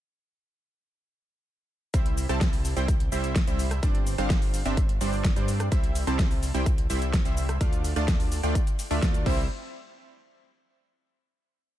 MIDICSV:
0, 0, Header, 1, 4, 480
1, 0, Start_track
1, 0, Key_signature, 0, "major"
1, 0, Tempo, 472441
1, 1970, Time_signature, 4, 2, 24, 8
1, 11977, End_track
2, 0, Start_track
2, 0, Title_t, "Supersaw synth"
2, 0, Program_c, 0, 81
2, 1969, Note_on_c, 0, 64, 86
2, 1969, Note_on_c, 0, 72, 85
2, 1970, Note_on_c, 0, 55, 91
2, 1970, Note_on_c, 0, 60, 86
2, 1970, Note_on_c, 0, 76, 107
2, 2301, Note_off_c, 0, 55, 0
2, 2301, Note_off_c, 0, 60, 0
2, 2301, Note_off_c, 0, 64, 0
2, 2301, Note_off_c, 0, 72, 0
2, 2301, Note_off_c, 0, 76, 0
2, 2330, Note_on_c, 0, 55, 94
2, 2330, Note_on_c, 0, 60, 87
2, 2330, Note_on_c, 0, 64, 88
2, 2330, Note_on_c, 0, 72, 85
2, 2330, Note_on_c, 0, 81, 107
2, 2781, Note_off_c, 0, 55, 0
2, 2781, Note_off_c, 0, 60, 0
2, 2781, Note_off_c, 0, 64, 0
2, 2781, Note_off_c, 0, 72, 0
2, 2781, Note_off_c, 0, 81, 0
2, 2810, Note_on_c, 0, 55, 85
2, 2810, Note_on_c, 0, 60, 83
2, 2810, Note_on_c, 0, 64, 81
2, 2810, Note_on_c, 0, 72, 82
2, 2810, Note_on_c, 0, 79, 101
2, 2990, Note_off_c, 0, 55, 0
2, 2990, Note_off_c, 0, 60, 0
2, 2990, Note_off_c, 0, 64, 0
2, 2990, Note_off_c, 0, 72, 0
2, 2990, Note_off_c, 0, 79, 0
2, 3170, Note_on_c, 0, 55, 79
2, 3170, Note_on_c, 0, 60, 74
2, 3170, Note_on_c, 0, 64, 73
2, 3170, Note_on_c, 0, 72, 77
2, 3170, Note_on_c, 0, 76, 89
2, 3459, Note_off_c, 0, 55, 0
2, 3459, Note_off_c, 0, 60, 0
2, 3459, Note_off_c, 0, 64, 0
2, 3459, Note_off_c, 0, 72, 0
2, 3459, Note_off_c, 0, 76, 0
2, 3530, Note_on_c, 0, 55, 76
2, 3530, Note_on_c, 0, 60, 67
2, 3530, Note_on_c, 0, 64, 65
2, 3530, Note_on_c, 0, 72, 70
2, 3530, Note_on_c, 0, 76, 84
2, 3861, Note_off_c, 0, 55, 0
2, 3861, Note_off_c, 0, 60, 0
2, 3861, Note_off_c, 0, 64, 0
2, 3861, Note_off_c, 0, 72, 0
2, 3861, Note_off_c, 0, 76, 0
2, 3890, Note_on_c, 0, 55, 90
2, 3890, Note_on_c, 0, 60, 86
2, 3890, Note_on_c, 0, 62, 85
2, 3890, Note_on_c, 0, 72, 85
2, 3890, Note_on_c, 0, 74, 101
2, 4221, Note_off_c, 0, 55, 0
2, 4221, Note_off_c, 0, 60, 0
2, 4221, Note_off_c, 0, 62, 0
2, 4221, Note_off_c, 0, 72, 0
2, 4221, Note_off_c, 0, 74, 0
2, 4250, Note_on_c, 0, 55, 93
2, 4250, Note_on_c, 0, 60, 87
2, 4250, Note_on_c, 0, 62, 87
2, 4250, Note_on_c, 0, 72, 89
2, 4250, Note_on_c, 0, 77, 102
2, 4701, Note_off_c, 0, 55, 0
2, 4701, Note_off_c, 0, 60, 0
2, 4701, Note_off_c, 0, 62, 0
2, 4701, Note_off_c, 0, 72, 0
2, 4701, Note_off_c, 0, 77, 0
2, 4730, Note_on_c, 0, 55, 87
2, 4730, Note_on_c, 0, 60, 85
2, 4730, Note_on_c, 0, 62, 85
2, 4730, Note_on_c, 0, 72, 81
2, 4730, Note_on_c, 0, 76, 97
2, 4910, Note_off_c, 0, 55, 0
2, 4910, Note_off_c, 0, 60, 0
2, 4910, Note_off_c, 0, 62, 0
2, 4910, Note_off_c, 0, 72, 0
2, 4910, Note_off_c, 0, 76, 0
2, 5089, Note_on_c, 0, 55, 80
2, 5089, Note_on_c, 0, 60, 77
2, 5089, Note_on_c, 0, 62, 77
2, 5089, Note_on_c, 0, 72, 75
2, 5089, Note_on_c, 0, 74, 92
2, 5378, Note_off_c, 0, 55, 0
2, 5378, Note_off_c, 0, 60, 0
2, 5378, Note_off_c, 0, 62, 0
2, 5378, Note_off_c, 0, 72, 0
2, 5378, Note_off_c, 0, 74, 0
2, 5449, Note_on_c, 0, 55, 74
2, 5449, Note_on_c, 0, 60, 70
2, 5449, Note_on_c, 0, 62, 70
2, 5449, Note_on_c, 0, 72, 67
2, 5449, Note_on_c, 0, 74, 86
2, 5780, Note_off_c, 0, 72, 0
2, 5781, Note_off_c, 0, 55, 0
2, 5781, Note_off_c, 0, 60, 0
2, 5781, Note_off_c, 0, 62, 0
2, 5781, Note_off_c, 0, 74, 0
2, 5809, Note_on_c, 0, 55, 96
2, 5809, Note_on_c, 0, 60, 90
2, 5809, Note_on_c, 0, 64, 82
2, 5809, Note_on_c, 0, 72, 87
2, 5809, Note_on_c, 0, 76, 103
2, 6141, Note_off_c, 0, 55, 0
2, 6141, Note_off_c, 0, 60, 0
2, 6141, Note_off_c, 0, 64, 0
2, 6141, Note_off_c, 0, 72, 0
2, 6141, Note_off_c, 0, 76, 0
2, 6169, Note_on_c, 0, 55, 96
2, 6169, Note_on_c, 0, 60, 90
2, 6169, Note_on_c, 0, 64, 87
2, 6169, Note_on_c, 0, 72, 88
2, 6169, Note_on_c, 0, 81, 108
2, 6621, Note_off_c, 0, 55, 0
2, 6621, Note_off_c, 0, 60, 0
2, 6621, Note_off_c, 0, 64, 0
2, 6621, Note_off_c, 0, 72, 0
2, 6621, Note_off_c, 0, 81, 0
2, 6649, Note_on_c, 0, 55, 87
2, 6649, Note_on_c, 0, 60, 81
2, 6649, Note_on_c, 0, 64, 79
2, 6649, Note_on_c, 0, 79, 97
2, 6650, Note_on_c, 0, 72, 80
2, 6830, Note_off_c, 0, 55, 0
2, 6830, Note_off_c, 0, 60, 0
2, 6830, Note_off_c, 0, 64, 0
2, 6830, Note_off_c, 0, 72, 0
2, 6830, Note_off_c, 0, 79, 0
2, 7009, Note_on_c, 0, 55, 78
2, 7009, Note_on_c, 0, 60, 73
2, 7009, Note_on_c, 0, 64, 76
2, 7009, Note_on_c, 0, 72, 73
2, 7009, Note_on_c, 0, 76, 91
2, 7298, Note_off_c, 0, 55, 0
2, 7298, Note_off_c, 0, 60, 0
2, 7298, Note_off_c, 0, 64, 0
2, 7298, Note_off_c, 0, 72, 0
2, 7298, Note_off_c, 0, 76, 0
2, 7369, Note_on_c, 0, 55, 75
2, 7369, Note_on_c, 0, 60, 67
2, 7369, Note_on_c, 0, 76, 83
2, 7370, Note_on_c, 0, 64, 68
2, 7370, Note_on_c, 0, 72, 69
2, 7701, Note_off_c, 0, 55, 0
2, 7701, Note_off_c, 0, 60, 0
2, 7701, Note_off_c, 0, 64, 0
2, 7701, Note_off_c, 0, 72, 0
2, 7701, Note_off_c, 0, 76, 0
2, 7729, Note_on_c, 0, 57, 90
2, 7729, Note_on_c, 0, 62, 84
2, 7729, Note_on_c, 0, 65, 87
2, 7729, Note_on_c, 0, 74, 82
2, 7729, Note_on_c, 0, 77, 101
2, 8060, Note_off_c, 0, 62, 0
2, 8061, Note_off_c, 0, 57, 0
2, 8061, Note_off_c, 0, 65, 0
2, 8061, Note_off_c, 0, 74, 0
2, 8061, Note_off_c, 0, 77, 0
2, 8089, Note_on_c, 0, 57, 96
2, 8089, Note_on_c, 0, 62, 92
2, 8089, Note_on_c, 0, 65, 87
2, 8089, Note_on_c, 0, 74, 87
2, 8089, Note_on_c, 0, 81, 110
2, 8540, Note_off_c, 0, 81, 0
2, 8541, Note_off_c, 0, 57, 0
2, 8541, Note_off_c, 0, 62, 0
2, 8541, Note_off_c, 0, 65, 0
2, 8541, Note_off_c, 0, 74, 0
2, 8569, Note_on_c, 0, 57, 92
2, 8569, Note_on_c, 0, 62, 82
2, 8569, Note_on_c, 0, 65, 78
2, 8569, Note_on_c, 0, 74, 81
2, 8569, Note_on_c, 0, 79, 99
2, 8750, Note_off_c, 0, 57, 0
2, 8750, Note_off_c, 0, 62, 0
2, 8750, Note_off_c, 0, 65, 0
2, 8750, Note_off_c, 0, 74, 0
2, 8750, Note_off_c, 0, 79, 0
2, 9049, Note_on_c, 0, 57, 98
2, 9049, Note_on_c, 0, 62, 91
2, 9049, Note_on_c, 0, 65, 91
2, 9049, Note_on_c, 0, 74, 87
2, 9049, Note_on_c, 0, 76, 108
2, 9141, Note_off_c, 0, 57, 0
2, 9141, Note_off_c, 0, 62, 0
2, 9141, Note_off_c, 0, 65, 0
2, 9141, Note_off_c, 0, 74, 0
2, 9141, Note_off_c, 0, 76, 0
2, 9169, Note_on_c, 0, 57, 105
2, 9169, Note_on_c, 0, 62, 90
2, 9169, Note_on_c, 0, 74, 93
2, 9169, Note_on_c, 0, 81, 106
2, 9409, Note_off_c, 0, 57, 0
2, 9409, Note_off_c, 0, 62, 0
2, 9409, Note_off_c, 0, 74, 0
2, 9409, Note_off_c, 0, 81, 0
2, 9409, Note_on_c, 0, 55, 86
2, 9409, Note_on_c, 0, 76, 96
2, 9410, Note_on_c, 0, 60, 83
2, 9410, Note_on_c, 0, 64, 84
2, 9410, Note_on_c, 0, 72, 80
2, 9588, Note_off_c, 0, 55, 0
2, 9588, Note_off_c, 0, 60, 0
2, 9588, Note_off_c, 0, 64, 0
2, 9588, Note_off_c, 0, 72, 0
2, 9588, Note_off_c, 0, 76, 0
2, 11977, End_track
3, 0, Start_track
3, 0, Title_t, "Analog synth bass"
3, 0, Program_c, 1, 38
3, 1970, Note_on_c, 1, 36, 90
3, 2306, Note_off_c, 1, 36, 0
3, 2329, Note_on_c, 1, 36, 99
3, 2785, Note_off_c, 1, 36, 0
3, 2810, Note_on_c, 1, 36, 101
3, 3146, Note_off_c, 1, 36, 0
3, 3170, Note_on_c, 1, 36, 99
3, 3506, Note_off_c, 1, 36, 0
3, 3530, Note_on_c, 1, 36, 102
3, 3866, Note_off_c, 1, 36, 0
3, 3890, Note_on_c, 1, 31, 91
3, 4226, Note_off_c, 1, 31, 0
3, 4250, Note_on_c, 1, 31, 94
3, 4706, Note_off_c, 1, 31, 0
3, 4730, Note_on_c, 1, 31, 97
3, 5066, Note_off_c, 1, 31, 0
3, 5090, Note_on_c, 1, 31, 98
3, 5426, Note_off_c, 1, 31, 0
3, 5450, Note_on_c, 1, 43, 101
3, 5786, Note_off_c, 1, 43, 0
3, 5809, Note_on_c, 1, 36, 96
3, 6146, Note_off_c, 1, 36, 0
3, 6170, Note_on_c, 1, 36, 97
3, 6626, Note_off_c, 1, 36, 0
3, 6649, Note_on_c, 1, 36, 101
3, 6985, Note_off_c, 1, 36, 0
3, 7009, Note_on_c, 1, 36, 99
3, 7345, Note_off_c, 1, 36, 0
3, 7369, Note_on_c, 1, 36, 102
3, 7705, Note_off_c, 1, 36, 0
3, 7729, Note_on_c, 1, 38, 94
3, 8065, Note_off_c, 1, 38, 0
3, 8089, Note_on_c, 1, 38, 96
3, 8545, Note_off_c, 1, 38, 0
3, 8569, Note_on_c, 1, 38, 101
3, 8726, Note_off_c, 1, 38, 0
3, 9049, Note_on_c, 1, 38, 96
3, 9146, Note_off_c, 1, 38, 0
3, 9169, Note_on_c, 1, 38, 96
3, 9403, Note_off_c, 1, 38, 0
3, 9409, Note_on_c, 1, 36, 97
3, 9633, Note_off_c, 1, 36, 0
3, 11977, End_track
4, 0, Start_track
4, 0, Title_t, "Drums"
4, 1969, Note_on_c, 9, 36, 119
4, 1970, Note_on_c, 9, 42, 70
4, 1973, Note_on_c, 9, 82, 44
4, 2071, Note_off_c, 9, 36, 0
4, 2072, Note_off_c, 9, 42, 0
4, 2074, Note_off_c, 9, 82, 0
4, 2090, Note_on_c, 9, 42, 43
4, 2191, Note_off_c, 9, 42, 0
4, 2210, Note_on_c, 9, 46, 108
4, 2212, Note_on_c, 9, 82, 81
4, 2311, Note_off_c, 9, 46, 0
4, 2314, Note_off_c, 9, 82, 0
4, 2330, Note_on_c, 9, 37, 62
4, 2330, Note_on_c, 9, 42, 40
4, 2333, Note_on_c, 9, 82, 33
4, 2432, Note_off_c, 9, 37, 0
4, 2432, Note_off_c, 9, 42, 0
4, 2434, Note_off_c, 9, 82, 0
4, 2449, Note_on_c, 9, 36, 121
4, 2450, Note_on_c, 9, 42, 68
4, 2451, Note_on_c, 9, 38, 124
4, 2453, Note_on_c, 9, 82, 46
4, 2551, Note_off_c, 9, 36, 0
4, 2551, Note_off_c, 9, 42, 0
4, 2552, Note_off_c, 9, 38, 0
4, 2554, Note_off_c, 9, 82, 0
4, 2570, Note_on_c, 9, 46, 62
4, 2573, Note_on_c, 9, 82, 32
4, 2672, Note_off_c, 9, 46, 0
4, 2674, Note_off_c, 9, 82, 0
4, 2690, Note_on_c, 9, 46, 109
4, 2693, Note_on_c, 9, 82, 80
4, 2792, Note_off_c, 9, 46, 0
4, 2794, Note_off_c, 9, 82, 0
4, 2810, Note_on_c, 9, 42, 41
4, 2812, Note_on_c, 9, 82, 34
4, 2912, Note_off_c, 9, 42, 0
4, 2914, Note_off_c, 9, 82, 0
4, 2930, Note_on_c, 9, 36, 122
4, 2930, Note_on_c, 9, 42, 71
4, 2933, Note_on_c, 9, 82, 44
4, 3031, Note_off_c, 9, 36, 0
4, 3032, Note_off_c, 9, 42, 0
4, 3034, Note_off_c, 9, 82, 0
4, 3050, Note_on_c, 9, 42, 44
4, 3152, Note_off_c, 9, 42, 0
4, 3170, Note_on_c, 9, 46, 106
4, 3173, Note_on_c, 9, 82, 81
4, 3272, Note_off_c, 9, 46, 0
4, 3274, Note_off_c, 9, 82, 0
4, 3290, Note_on_c, 9, 42, 43
4, 3293, Note_on_c, 9, 82, 34
4, 3392, Note_off_c, 9, 42, 0
4, 3394, Note_off_c, 9, 82, 0
4, 3409, Note_on_c, 9, 36, 115
4, 3410, Note_on_c, 9, 42, 69
4, 3411, Note_on_c, 9, 38, 123
4, 3413, Note_on_c, 9, 82, 43
4, 3511, Note_off_c, 9, 36, 0
4, 3512, Note_off_c, 9, 42, 0
4, 3513, Note_off_c, 9, 38, 0
4, 3514, Note_off_c, 9, 82, 0
4, 3530, Note_on_c, 9, 42, 44
4, 3533, Note_on_c, 9, 82, 32
4, 3632, Note_off_c, 9, 42, 0
4, 3634, Note_off_c, 9, 82, 0
4, 3650, Note_on_c, 9, 46, 110
4, 3652, Note_on_c, 9, 82, 75
4, 3751, Note_off_c, 9, 46, 0
4, 3754, Note_off_c, 9, 82, 0
4, 3770, Note_on_c, 9, 37, 78
4, 3770, Note_on_c, 9, 42, 41
4, 3773, Note_on_c, 9, 82, 34
4, 3872, Note_off_c, 9, 37, 0
4, 3872, Note_off_c, 9, 42, 0
4, 3874, Note_off_c, 9, 82, 0
4, 3889, Note_on_c, 9, 36, 122
4, 3890, Note_on_c, 9, 42, 64
4, 3893, Note_on_c, 9, 82, 43
4, 3991, Note_off_c, 9, 36, 0
4, 3992, Note_off_c, 9, 42, 0
4, 3995, Note_off_c, 9, 82, 0
4, 4010, Note_on_c, 9, 42, 40
4, 4112, Note_off_c, 9, 42, 0
4, 4130, Note_on_c, 9, 46, 115
4, 4133, Note_on_c, 9, 82, 75
4, 4232, Note_off_c, 9, 46, 0
4, 4234, Note_off_c, 9, 82, 0
4, 4250, Note_on_c, 9, 37, 59
4, 4250, Note_on_c, 9, 42, 40
4, 4252, Note_on_c, 9, 82, 31
4, 4351, Note_off_c, 9, 37, 0
4, 4351, Note_off_c, 9, 42, 0
4, 4354, Note_off_c, 9, 82, 0
4, 4369, Note_on_c, 9, 36, 127
4, 4370, Note_on_c, 9, 42, 69
4, 4371, Note_on_c, 9, 38, 127
4, 4372, Note_on_c, 9, 82, 44
4, 4471, Note_off_c, 9, 36, 0
4, 4472, Note_off_c, 9, 38, 0
4, 4472, Note_off_c, 9, 42, 0
4, 4474, Note_off_c, 9, 82, 0
4, 4490, Note_on_c, 9, 46, 65
4, 4492, Note_on_c, 9, 82, 33
4, 4591, Note_off_c, 9, 46, 0
4, 4594, Note_off_c, 9, 82, 0
4, 4609, Note_on_c, 9, 46, 112
4, 4612, Note_on_c, 9, 82, 76
4, 4711, Note_off_c, 9, 46, 0
4, 4714, Note_off_c, 9, 82, 0
4, 4730, Note_on_c, 9, 42, 41
4, 4732, Note_on_c, 9, 82, 33
4, 4831, Note_off_c, 9, 42, 0
4, 4834, Note_off_c, 9, 82, 0
4, 4849, Note_on_c, 9, 36, 127
4, 4849, Note_on_c, 9, 42, 70
4, 4852, Note_on_c, 9, 82, 42
4, 4951, Note_off_c, 9, 36, 0
4, 4951, Note_off_c, 9, 42, 0
4, 4954, Note_off_c, 9, 82, 0
4, 4969, Note_on_c, 9, 42, 41
4, 5071, Note_off_c, 9, 42, 0
4, 5089, Note_on_c, 9, 46, 112
4, 5091, Note_on_c, 9, 82, 81
4, 5190, Note_off_c, 9, 46, 0
4, 5193, Note_off_c, 9, 82, 0
4, 5209, Note_on_c, 9, 46, 67
4, 5212, Note_on_c, 9, 82, 35
4, 5311, Note_off_c, 9, 46, 0
4, 5314, Note_off_c, 9, 82, 0
4, 5329, Note_on_c, 9, 36, 124
4, 5329, Note_on_c, 9, 42, 71
4, 5330, Note_on_c, 9, 38, 122
4, 5332, Note_on_c, 9, 82, 44
4, 5431, Note_off_c, 9, 36, 0
4, 5431, Note_off_c, 9, 42, 0
4, 5432, Note_off_c, 9, 38, 0
4, 5433, Note_off_c, 9, 82, 0
4, 5449, Note_on_c, 9, 42, 43
4, 5452, Note_on_c, 9, 82, 32
4, 5551, Note_off_c, 9, 42, 0
4, 5553, Note_off_c, 9, 82, 0
4, 5569, Note_on_c, 9, 46, 106
4, 5572, Note_on_c, 9, 82, 77
4, 5671, Note_off_c, 9, 46, 0
4, 5673, Note_off_c, 9, 82, 0
4, 5690, Note_on_c, 9, 37, 82
4, 5690, Note_on_c, 9, 42, 41
4, 5692, Note_on_c, 9, 82, 32
4, 5791, Note_off_c, 9, 37, 0
4, 5791, Note_off_c, 9, 42, 0
4, 5794, Note_off_c, 9, 82, 0
4, 5809, Note_on_c, 9, 36, 127
4, 5809, Note_on_c, 9, 42, 62
4, 5812, Note_on_c, 9, 82, 42
4, 5911, Note_off_c, 9, 36, 0
4, 5911, Note_off_c, 9, 42, 0
4, 5914, Note_off_c, 9, 82, 0
4, 5929, Note_on_c, 9, 42, 40
4, 6031, Note_off_c, 9, 42, 0
4, 6049, Note_on_c, 9, 46, 114
4, 6052, Note_on_c, 9, 82, 78
4, 6151, Note_off_c, 9, 46, 0
4, 6153, Note_off_c, 9, 82, 0
4, 6169, Note_on_c, 9, 37, 64
4, 6169, Note_on_c, 9, 42, 40
4, 6172, Note_on_c, 9, 82, 33
4, 6271, Note_off_c, 9, 37, 0
4, 6271, Note_off_c, 9, 42, 0
4, 6273, Note_off_c, 9, 82, 0
4, 6289, Note_on_c, 9, 36, 127
4, 6289, Note_on_c, 9, 42, 67
4, 6290, Note_on_c, 9, 38, 125
4, 6292, Note_on_c, 9, 82, 43
4, 6391, Note_off_c, 9, 36, 0
4, 6391, Note_off_c, 9, 38, 0
4, 6391, Note_off_c, 9, 42, 0
4, 6393, Note_off_c, 9, 82, 0
4, 6410, Note_on_c, 9, 46, 70
4, 6412, Note_on_c, 9, 82, 30
4, 6511, Note_off_c, 9, 46, 0
4, 6514, Note_off_c, 9, 82, 0
4, 6529, Note_on_c, 9, 46, 112
4, 6532, Note_on_c, 9, 82, 78
4, 6631, Note_off_c, 9, 46, 0
4, 6634, Note_off_c, 9, 82, 0
4, 6649, Note_on_c, 9, 42, 38
4, 6652, Note_on_c, 9, 82, 34
4, 6751, Note_off_c, 9, 42, 0
4, 6754, Note_off_c, 9, 82, 0
4, 6769, Note_on_c, 9, 36, 125
4, 6769, Note_on_c, 9, 42, 66
4, 6772, Note_on_c, 9, 82, 44
4, 6871, Note_off_c, 9, 36, 0
4, 6871, Note_off_c, 9, 42, 0
4, 6873, Note_off_c, 9, 82, 0
4, 6889, Note_on_c, 9, 42, 41
4, 6991, Note_off_c, 9, 42, 0
4, 7009, Note_on_c, 9, 46, 115
4, 7012, Note_on_c, 9, 82, 76
4, 7111, Note_off_c, 9, 46, 0
4, 7114, Note_off_c, 9, 82, 0
4, 7130, Note_on_c, 9, 42, 41
4, 7133, Note_on_c, 9, 82, 32
4, 7232, Note_off_c, 9, 42, 0
4, 7234, Note_off_c, 9, 82, 0
4, 7249, Note_on_c, 9, 36, 126
4, 7249, Note_on_c, 9, 42, 66
4, 7250, Note_on_c, 9, 38, 126
4, 7252, Note_on_c, 9, 82, 45
4, 7351, Note_off_c, 9, 36, 0
4, 7351, Note_off_c, 9, 42, 0
4, 7352, Note_off_c, 9, 38, 0
4, 7354, Note_off_c, 9, 82, 0
4, 7370, Note_on_c, 9, 42, 39
4, 7372, Note_on_c, 9, 82, 31
4, 7471, Note_off_c, 9, 42, 0
4, 7474, Note_off_c, 9, 82, 0
4, 7490, Note_on_c, 9, 46, 109
4, 7492, Note_on_c, 9, 82, 74
4, 7591, Note_off_c, 9, 46, 0
4, 7594, Note_off_c, 9, 82, 0
4, 7609, Note_on_c, 9, 37, 84
4, 7609, Note_on_c, 9, 42, 39
4, 7612, Note_on_c, 9, 82, 32
4, 7711, Note_off_c, 9, 37, 0
4, 7711, Note_off_c, 9, 42, 0
4, 7714, Note_off_c, 9, 82, 0
4, 7729, Note_on_c, 9, 36, 118
4, 7730, Note_on_c, 9, 42, 64
4, 7732, Note_on_c, 9, 82, 42
4, 7831, Note_off_c, 9, 36, 0
4, 7831, Note_off_c, 9, 42, 0
4, 7834, Note_off_c, 9, 82, 0
4, 7850, Note_on_c, 9, 42, 38
4, 7852, Note_on_c, 9, 82, 32
4, 7951, Note_off_c, 9, 42, 0
4, 7954, Note_off_c, 9, 82, 0
4, 7970, Note_on_c, 9, 46, 119
4, 7972, Note_on_c, 9, 82, 79
4, 8071, Note_off_c, 9, 46, 0
4, 8074, Note_off_c, 9, 82, 0
4, 8090, Note_on_c, 9, 37, 64
4, 8090, Note_on_c, 9, 42, 38
4, 8092, Note_on_c, 9, 82, 33
4, 8191, Note_off_c, 9, 37, 0
4, 8191, Note_off_c, 9, 42, 0
4, 8194, Note_off_c, 9, 82, 0
4, 8209, Note_on_c, 9, 36, 127
4, 8210, Note_on_c, 9, 38, 118
4, 8210, Note_on_c, 9, 42, 65
4, 8212, Note_on_c, 9, 82, 43
4, 8311, Note_off_c, 9, 36, 0
4, 8311, Note_off_c, 9, 42, 0
4, 8312, Note_off_c, 9, 38, 0
4, 8314, Note_off_c, 9, 82, 0
4, 8330, Note_on_c, 9, 46, 68
4, 8333, Note_on_c, 9, 82, 31
4, 8432, Note_off_c, 9, 46, 0
4, 8434, Note_off_c, 9, 82, 0
4, 8450, Note_on_c, 9, 46, 111
4, 8452, Note_on_c, 9, 82, 79
4, 8551, Note_off_c, 9, 46, 0
4, 8554, Note_off_c, 9, 82, 0
4, 8570, Note_on_c, 9, 42, 38
4, 8572, Note_on_c, 9, 82, 34
4, 8672, Note_off_c, 9, 42, 0
4, 8674, Note_off_c, 9, 82, 0
4, 8689, Note_on_c, 9, 36, 120
4, 8690, Note_on_c, 9, 42, 62
4, 8693, Note_on_c, 9, 82, 43
4, 8791, Note_off_c, 9, 36, 0
4, 8792, Note_off_c, 9, 42, 0
4, 8794, Note_off_c, 9, 82, 0
4, 8810, Note_on_c, 9, 42, 39
4, 8813, Note_on_c, 9, 82, 32
4, 8912, Note_off_c, 9, 42, 0
4, 8914, Note_off_c, 9, 82, 0
4, 8930, Note_on_c, 9, 46, 114
4, 8932, Note_on_c, 9, 82, 81
4, 9031, Note_off_c, 9, 46, 0
4, 9034, Note_off_c, 9, 82, 0
4, 9050, Note_on_c, 9, 46, 66
4, 9053, Note_on_c, 9, 82, 33
4, 9152, Note_off_c, 9, 46, 0
4, 9154, Note_off_c, 9, 82, 0
4, 9169, Note_on_c, 9, 36, 117
4, 9170, Note_on_c, 9, 38, 119
4, 9170, Note_on_c, 9, 42, 67
4, 9172, Note_on_c, 9, 82, 43
4, 9271, Note_off_c, 9, 36, 0
4, 9271, Note_off_c, 9, 42, 0
4, 9272, Note_off_c, 9, 38, 0
4, 9274, Note_off_c, 9, 82, 0
4, 9290, Note_on_c, 9, 42, 38
4, 9292, Note_on_c, 9, 82, 32
4, 9391, Note_off_c, 9, 42, 0
4, 9394, Note_off_c, 9, 82, 0
4, 9409, Note_on_c, 9, 36, 107
4, 9409, Note_on_c, 9, 49, 85
4, 9511, Note_off_c, 9, 36, 0
4, 9511, Note_off_c, 9, 49, 0
4, 11977, End_track
0, 0, End_of_file